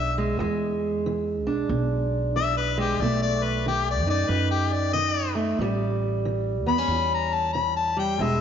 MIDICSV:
0, 0, Header, 1, 4, 480
1, 0, Start_track
1, 0, Tempo, 650689
1, 298, Time_signature, 4, 2, 24, 8
1, 6202, End_track
2, 0, Start_track
2, 0, Title_t, "Harmonica"
2, 0, Program_c, 0, 22
2, 0, Note_on_c, 0, 76, 108
2, 108, Note_off_c, 0, 76, 0
2, 1746, Note_on_c, 0, 76, 109
2, 1893, Note_off_c, 0, 76, 0
2, 1897, Note_on_c, 0, 71, 88
2, 2053, Note_off_c, 0, 71, 0
2, 2067, Note_on_c, 0, 67, 84
2, 2225, Note_on_c, 0, 74, 89
2, 2236, Note_off_c, 0, 67, 0
2, 2375, Note_off_c, 0, 74, 0
2, 2379, Note_on_c, 0, 74, 105
2, 2532, Note_on_c, 0, 71, 87
2, 2543, Note_off_c, 0, 74, 0
2, 2690, Note_off_c, 0, 71, 0
2, 2713, Note_on_c, 0, 67, 94
2, 2861, Note_off_c, 0, 67, 0
2, 2881, Note_on_c, 0, 74, 86
2, 3020, Note_off_c, 0, 74, 0
2, 3025, Note_on_c, 0, 74, 95
2, 3166, Note_on_c, 0, 71, 94
2, 3177, Note_off_c, 0, 74, 0
2, 3322, Note_off_c, 0, 71, 0
2, 3327, Note_on_c, 0, 67, 90
2, 3493, Note_on_c, 0, 74, 79
2, 3504, Note_off_c, 0, 67, 0
2, 3636, Note_off_c, 0, 74, 0
2, 3640, Note_on_c, 0, 75, 107
2, 3936, Note_off_c, 0, 75, 0
2, 4931, Note_on_c, 0, 83, 104
2, 5245, Note_off_c, 0, 83, 0
2, 5270, Note_on_c, 0, 82, 85
2, 5413, Note_on_c, 0, 81, 82
2, 5424, Note_off_c, 0, 82, 0
2, 5551, Note_off_c, 0, 81, 0
2, 5556, Note_on_c, 0, 83, 94
2, 5722, Note_off_c, 0, 83, 0
2, 5730, Note_on_c, 0, 81, 88
2, 5890, Note_off_c, 0, 81, 0
2, 5895, Note_on_c, 0, 79, 92
2, 6069, Note_on_c, 0, 76, 86
2, 6080, Note_off_c, 0, 79, 0
2, 6202, Note_off_c, 0, 76, 0
2, 6202, End_track
3, 0, Start_track
3, 0, Title_t, "Steel-string acoustic guitar"
3, 0, Program_c, 1, 25
3, 0, Note_on_c, 1, 52, 61
3, 0, Note_on_c, 1, 56, 64
3, 0, Note_on_c, 1, 62, 56
3, 111, Note_off_c, 1, 56, 0
3, 132, Note_on_c, 1, 56, 59
3, 258, Note_off_c, 1, 52, 0
3, 269, Note_off_c, 1, 62, 0
3, 285, Note_off_c, 1, 56, 0
3, 287, Note_on_c, 1, 40, 76
3, 297, Note_on_c, 1, 56, 64
3, 736, Note_off_c, 1, 40, 0
3, 783, Note_on_c, 1, 52, 62
3, 1082, Note_on_c, 1, 62, 57
3, 1224, Note_off_c, 1, 52, 0
3, 1250, Note_on_c, 1, 47, 67
3, 1697, Note_off_c, 1, 47, 0
3, 1741, Note_on_c, 1, 52, 58
3, 2034, Note_off_c, 1, 56, 0
3, 2048, Note_on_c, 1, 56, 58
3, 2183, Note_off_c, 1, 52, 0
3, 2200, Note_off_c, 1, 62, 0
3, 2203, Note_off_c, 1, 56, 0
3, 2228, Note_on_c, 1, 47, 77
3, 2235, Note_on_c, 1, 57, 63
3, 2666, Note_off_c, 1, 47, 0
3, 2702, Note_on_c, 1, 51, 61
3, 3002, Note_on_c, 1, 63, 52
3, 3143, Note_off_c, 1, 51, 0
3, 3183, Note_on_c, 1, 42, 67
3, 3624, Note_off_c, 1, 42, 0
3, 3642, Note_on_c, 1, 51, 61
3, 3939, Note_off_c, 1, 57, 0
3, 3948, Note_on_c, 1, 57, 64
3, 4094, Note_off_c, 1, 51, 0
3, 4113, Note_off_c, 1, 57, 0
3, 4120, Note_off_c, 1, 63, 0
3, 4136, Note_on_c, 1, 45, 78
3, 4142, Note_on_c, 1, 55, 68
3, 4581, Note_off_c, 1, 45, 0
3, 4613, Note_on_c, 1, 52, 59
3, 4915, Note_on_c, 1, 59, 55
3, 5002, Note_off_c, 1, 59, 0
3, 5002, Note_on_c, 1, 61, 49
3, 5059, Note_off_c, 1, 52, 0
3, 5100, Note_on_c, 1, 40, 69
3, 5543, Note_off_c, 1, 40, 0
3, 5569, Note_on_c, 1, 52, 64
3, 5867, Note_off_c, 1, 55, 0
3, 5876, Note_on_c, 1, 55, 61
3, 6018, Note_off_c, 1, 52, 0
3, 6051, Note_on_c, 1, 40, 77
3, 6055, Note_off_c, 1, 55, 0
3, 6057, Note_off_c, 1, 61, 0
3, 6058, Note_on_c, 1, 56, 67
3, 6202, Note_off_c, 1, 40, 0
3, 6202, Note_off_c, 1, 56, 0
3, 6202, End_track
4, 0, Start_track
4, 0, Title_t, "Upright bass"
4, 0, Program_c, 2, 32
4, 0, Note_on_c, 2, 35, 94
4, 263, Note_off_c, 2, 35, 0
4, 295, Note_on_c, 2, 40, 89
4, 1064, Note_off_c, 2, 40, 0
4, 1064, Note_on_c, 2, 35, 78
4, 1241, Note_off_c, 2, 35, 0
4, 1249, Note_on_c, 2, 35, 90
4, 2184, Note_off_c, 2, 35, 0
4, 2212, Note_on_c, 2, 35, 90
4, 2975, Note_off_c, 2, 35, 0
4, 2975, Note_on_c, 2, 42, 80
4, 3157, Note_off_c, 2, 42, 0
4, 3164, Note_on_c, 2, 42, 93
4, 4102, Note_off_c, 2, 42, 0
4, 4122, Note_on_c, 2, 33, 86
4, 4897, Note_off_c, 2, 33, 0
4, 4897, Note_on_c, 2, 40, 84
4, 5069, Note_off_c, 2, 40, 0
4, 5073, Note_on_c, 2, 40, 92
4, 6017, Note_off_c, 2, 40, 0
4, 6042, Note_on_c, 2, 28, 94
4, 6202, Note_off_c, 2, 28, 0
4, 6202, End_track
0, 0, End_of_file